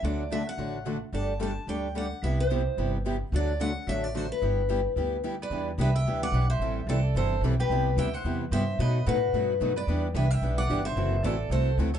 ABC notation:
X:1
M:4/4
L:1/8
Q:"Swing" 1/4=219
K:G
V:1 name="Steel-string acoustic guitar"
d2 e f4 z | a2 a2 g2 f2 | e c4 z3 | d2 f2 e d c B- |
B6 z d- | [K:Em] d z e g2 f2 e- | e2 d2 c2 z B- | B2 g f2 z e2 |
^d2 B4- B =d- | d z e g2 f2 e- | e2 d2 c2 z ^c |]
V:2 name="Mandolin"
z8 | z8 | z8 | z8 |
z6 z B- | [K:Em] B z B e2 d2 c- | c2 A2 A2 z G- | G2 e c2 z c2 |
B2 F4- F B- | B z B e2 d2 c- | c2 A2 A2 z A |]
V:3 name="Steel-string acoustic guitar"
[D,A,DFA] z [D,A,DFA] z [D,A,DFA] z [D,A,DFA] z | [G,A,DGd] z [G,A,DGd] z [G,A,DGd] z [G,A,DGd] z | [C,G,B,EG] z [C,G,B,EG] z [C,G,B,EG] z [C,G,B,EG] z | [D,A,DFA] z [D,A,DFA] z [D,A,DFA] z [D,A,DFA] z |
[G,B,EG] z [G,B,EG] z [G,B,EG] z [G,B,EG] z | [K:Em] [E,G,DEB] z [E,G,DEB] z [E,G,DEB] z [E,G,DEB] z | [E,G,CEA] z [E,G,CEA] z [E,G,CEA] z [E,G,CEA] z | [C,G,B,EG] z [C,G,B,EG] z [C,G,B,EG] z [C,G,B,EG] z |
[B,,F,A,^DFB] z [B,,F,A,DFB] z [B,,F,A,DFB] z [B,,F,A,DFB] z | [E,G,DEB] z [E,G,DEB] z [E,G,DEB] z [E,G,DEB] z | [F,CEA] z [F,CEA] z [F,CEA] z [F,CEA] z |]
V:4 name="Steel-string acoustic guitar"
[D,F,A,DF] z [D,F,A,DF] z [D,F,A,DF] z [D,F,A,DF] z | [G,A,DA] z [G,A,DA] z [G,A,DA] z [G,A,DA] z | [C,G,B,EG] z [C,G,B,EG] z [C,G,B,EG] z [C,G,B,EG] z | [D,F,A,DF] z [D,F,A,DF] z [D,F,A,DF] z [D,F,A,DF] z |
[G,B,EG] z [G,B,EG] z [G,B,EG] z [G,B,EG] z | [K:Em] [E,B,DG] z [E,B,DG] z [E,B,DG] z [E,B,DG] z | [E,G,CEA] z [E,G,CEA] z [E,G,CEA] z [E,G,CEA] z | [C,G,B,EG] z [C,G,B,EG] z [C,G,B,EG] z [C,G,B,EG] z |
[B,,F,A,^DF] z [B,,F,A,DF] z [B,,F,A,DF] z [B,,F,A,DF] z | [E,B,DG] z [E,B,DG] z [E,B,DG] z [E,B,DG] z | [C,E,A,EF] z [C,E,A,EF] z [C,E,A,EF] z [C,E,A,EF] z |]
V:5 name="Upright bass" clef=bass
D,,4 A,,,4 | G,,,4 D,,4 | C,,4 G,,,4 | D,,4 A,,,4 |
G,,,4 D,,4 | [K:Em] E,,2 C,,2 D,,2 B,,,2 | A,,,2 C,,2 G,,,2 B,,,2 | C,,2 D,,2 E,,2 G,,2 |
B,,2 A,,2 G,,2 F,,2 | E,,2 C,,2 B,,,2 G,,,2 | F,,,2 A,,,2 C,,2 D,,2 |]